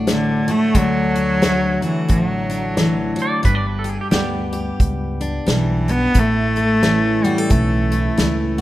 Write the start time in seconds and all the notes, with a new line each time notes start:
Already playing: A1 A2 D3 A3 D4 F#4
0.07 D3 F#3, snare, closed hi-hat
0.48 A3 F#4, closed hi-hat
0.75 D2 D3 F#3 D4, kick, closed hi-hat
1.16 F#4, closed hi-hat
1.42 F#3 A3, snare, closed hi-hat
1.82 E3 F#4, closed hi-hat
2.09 A1 A2 F#3, kick, closed hi-hat
2.50 D4, closed hi-hat
2.77 E3, snare, closed hi-hat
3.16 F#3, closed hi-hat
3.22 D5
3.43 G1 G2 D4 B4, kick, closed hi-hat
3.55 D5
3.67 B4
3.79 A4
3.84 G4, closed hi-hat
3.89 G#4
4.01 G4
4.11 D2 G3 B3 G4, snare, closed hi-hat
4.53 G4, closed hi-hat
4.80 C#2, kick, closed hi-hat
5.21 D4, closed hi-hat
5.47 B1 G3, snare, closed hi-hat
5.51 E3
5.88 B3 G4, closed hi-hat
6.14 A1 A2 A3 E4, kick, closed hi-hat
6.56 A4, closed hi-hat
6.83 E3 C#4, snare, closed hi-hat
7.24 G3 F#4, closed hi-hat
7.38 A4
7.50 B1 A2 A3, kick, closed hi-hat
7.92 E4, closed hi-hat
8.18 C#2 E3, snare, closed hi-hat